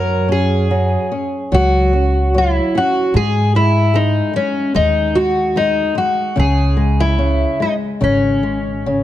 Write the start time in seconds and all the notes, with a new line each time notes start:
Already playing: F#2 F#3 A#4
0.28 C#4 G#4
0.71 F#3
1.12 C#4
1.52 C#2 F#3 F#4
1.93 C#4
2.34 F#3 E4
2.75 C#4 F#4
3.14 G#2 G#3 G#4
3.55 G#3 E4
3.94 G#3 D#4
4.33 G#3 C#4
4.74 D#2 G#3 D#4
5.15 G#3 F#4
5.56 G#3 D#4
5.95 G#3 F#4
6.36 C#2 C#3 G#4
6.77 G#3
7.00 E4
7.18 C#3
7.60 G#3 D#4
8.01 G#1 C#3 C#4
8.43 G#3
8.86 C#3